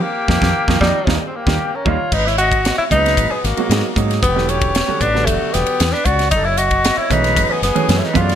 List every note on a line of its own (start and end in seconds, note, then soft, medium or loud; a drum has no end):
0.01 0.80 A#3 medium
0.01 0.81 G4 medium
0.28 0.38 F2 medium
0.28 0.37 D#3 medium
0.28 0.37 F3 medium
0.28 0.37 A#3 medium
0.28 kick medium
0.28 snare medium
0.41 0.52 F2 medium
0.41 0.50 D#3 medium
0.41 0.50 F3 medium
0.41 0.50 A#3 medium
0.41 kick medium
0.41 snare medium
0.68 0.78 F2 medium
0.68 0.76 D#3 medium
0.68 0.77 F3 medium
0.68 0.76 A#3 medium
0.68 kick medium
0.68 snare medium
0.81 0.91 F2 medium
0.81 0.90 D#3 loud
0.81 0.89 F3 loud
0.81 1.23 G3 medium
0.81 0.89 A#3 loud
0.81 1.24 D#4 medium
0.81 kick medium
0.81 snare medium
1.07 1.17 D#2 medium
1.07 1.15 D#3 medium
1.07 1.16 G3 medium
1.07 1.15 A#3 medium
1.07 kick medium
1.07 snare medium
1.27 1.37 C4 medium
1.27 1.37 G#4 soft
1.36 1.77 A#3 medium
1.36 1.76 G4 medium
1.47 1.56 D#2 medium
1.47 1.55 D#3 medium
1.47 1.55 G3 medium
1.47 1.55 A#3 medium
1.47 kick medium
1.47 snare medium
1.75 1.90 C#4 medium
1.75 1.89 A#4 medium
1.85 1.96 D#2 medium
1.85 1.94 D#3 medium
1.85 1.94 G3 loud
1.85 1.94 A#3 medium
1.85 2.14 F4 medium
1.85 2.16 C#5 medium
1.85 kick medium
2.12 2.71 G#1 medium
2.12 2.28 D#4 medium
2.12 2.29 B4 medium
2.12 kick medium
2.12 crash medium
2.26 2.38 E4 medium
2.26 2.39 C#5 medium
2.26 snare soft
2.38 2.75 F#4 loud
2.38 2.76 D#5 medium
2.38 hi-hat pedal medium
2.38 ride medium
2.52 kick medium
2.52 ride medium
2.65 snare loud
2.65 hi-hat pedal medium
2.65 ride medium
2.78 2.84 E4 medium
2.78 2.84 C#5 medium
2.78 muted fretless electric bass stroke soft
2.90 3.15 C#2 medium
2.90 3.32 A#2 medium
2.90 3.32 B2 medium
2.90 3.32 F#3 medium
2.90 3.32 G#3 medium
2.90 3.32 D#4 medium
2.90 3.33 D#4 loud
2.90 3.31 B4 medium
2.90 kick medium
2.90 hi-hat pedal medium
2.90 ride medium
3.06 snare soft
3.06 ride medium
3.17 3.29 G#1 medium
3.17 kick medium
3.17 hi-hat pedal medium
3.17 ride medium
3.30 3.46 B3 medium
3.30 3.43 G#4 medium
3.41 3.56 G#1 medium
3.41 3.96 A#3 medium
3.41 3.95 F#4 medium
3.41 hi-hat pedal medium
3.41 ride medium
3.46 snare soft
3.57 3.65 B2 medium
3.57 3.65 F#3 medium
3.57 3.65 G#3 medium
3.57 3.65 A#3 medium
3.57 3.65 F#4 medium
3.57 ride soft
3.69 3.81 G#2 medium
3.69 3.87 B2 medium
3.69 3.86 F#3 medium
3.69 3.87 G#3 medium
3.69 3.86 A#3 medium
3.69 3.86 D#4 medium
3.69 snare loud
3.69 hi-hat pedal medium
3.69 ride medium
3.96 4.20 G#2 medium
3.96 4.21 B2 medium
3.96 4.21 F#3 medium
3.96 4.21 G#3 medium
3.96 4.21 A#3 medium
3.96 4.21 D#4 medium
3.96 kick medium
3.96 hi-hat pedal medium
3.96 ride medium
4.11 snare soft
4.11 ride medium
4.22 4.81 E1 medium
4.22 4.51 B3 loud
4.22 4.48 G4 medium
4.22 kick loud
4.22 hi-hat pedal medium
4.22 ride medium
4.36 4.69 D3 medium
4.36 4.69 F#3 medium
4.36 4.69 G3 medium
4.36 4.69 B3 medium
4.36 4.69 E4 medium
4.36 snare soft
4.48 5.03 C#4 medium
4.48 5.01 G4 medium
4.48 hi-hat pedal medium
4.48 ride soft
4.61 kick medium
4.61 ride medium
4.75 snare loud
4.75 hi-hat pedal medium
4.75 ride medium
4.88 5.04 D3 medium
4.88 5.04 F#3 medium
4.88 5.04 G3 medium
4.88 5.04 B3 medium
4.88 5.04 F#4 medium
4.88 muted fretless electric bass stroke soft
5.00 5.24 A1 medium
5.00 5.27 D4 medium
5.00 5.28 B4 medium
5.00 kick medium
5.00 hi-hat pedal medium
5.00 ride medium
5.14 5.80 D3 medium
5.14 5.80 F#3 medium
5.14 5.80 G3 medium
5.14 5.80 B3 medium
5.14 5.80 D4 medium
5.14 snare soft
5.26 5.39 E1 medium
5.26 5.54 A3 medium
5.26 5.55 F#4 medium
5.26 kick medium
5.26 hi-hat pedal medium
5.26 ride medium
5.42 muted fretless electric bass stroke soft
5.53 5.66 E1 medium
5.53 5.94 B3 loud
5.53 5.94 G4 medium
5.53 snare soft
5.53 hi-hat pedal medium
5.53 ride medium
5.66 ride medium
5.80 5.92 E2 medium
5.80 snare loud
5.80 hi-hat pedal medium
5.80 ride medium
5.92 6.07 D4 medium
5.92 6.07 B4 medium
5.92 snare soft
6.05 6.29 C#2 medium
6.05 6.30 F#4 medium
6.05 6.32 D5 medium
6.05 kick medium
6.05 hi-hat pedal medium
6.05 ride medium
6.19 snare soft
6.19 ride medium
6.31 6.90 F#1 medium
6.31 6.46 D#4 loud
6.31 6.48 A4 medium
6.31 kick medium
6.31 hi-hat pedal medium
6.31 ride medium
6.44 6.60 E4 medium
6.44 6.59 C#5 medium
6.57 6.99 F#4 medium
6.57 6.99 D#5 medium
6.57 hi-hat pedal medium
6.57 ride medium
6.71 kick medium
6.71 ride medium
6.84 snare loud
6.84 hi-hat pedal medium
6.84 ride medium
6.97 7.13 E4 medium
6.97 7.12 C#5 medium
6.97 muted fretless electric bass stroke soft
7.10 7.34 B1 medium
7.10 7.51 E3 medium
7.10 7.52 F#3 medium
7.10 7.52 G#3 medium
7.10 7.51 A3 medium
7.10 7.52 C#4 medium
7.10 7.52 D#4 medium
7.10 7.52 B4 medium
7.10 kick medium
7.10 hi-hat pedal medium
7.10 ride medium
7.24 snare soft
7.24 ride medium
7.37 7.48 F#1 loud
7.37 kick medium
7.37 hi-hat pedal medium
7.37 ride medium
7.51 7.63 B3 medium
7.51 7.63 G#4 medium
7.62 7.74 F#1 medium
7.62 8.00 B3 medium
7.62 8.02 G#4 medium
7.62 snare soft
7.62 hi-hat pedal medium
7.62 ride medium
7.75 7.84 E3 medium
7.75 7.84 F#3 medium
7.75 7.84 G#3 medium
7.75 7.84 A3 medium
7.75 7.84 C#4 medium
7.75 muted fretless electric bass stroke soft
7.75 ride medium
7.89 8.00 F#2 medium
7.89 8.05 E3 medium
7.89 8.05 F#3 medium
7.89 8.05 G#3 medium
7.89 8.05 A3 medium
7.89 8.05 C#4 medium
7.89 snare loud
7.89 hi-hat pedal medium
7.89 ride medium
7.99 8.05 E4 medium
7.99 8.07 C#5 medium
8.04 8.17 D#4 medium
8.04 8.22 B4 medium
8.04 snare soft
8.13 8.35 F#2 medium
8.13 8.35 E3 medium
8.13 8.35 F#3 medium
8.13 8.35 G#3 medium
8.13 8.35 A3 medium
8.13 8.35 B3 medium
8.13 8.35 F4 medium
8.13 kick medium
8.13 hi-hat pedal medium
8.13 ride medium
8.20 8.35 D5 medium
8.29 snare soft
8.29 ride medium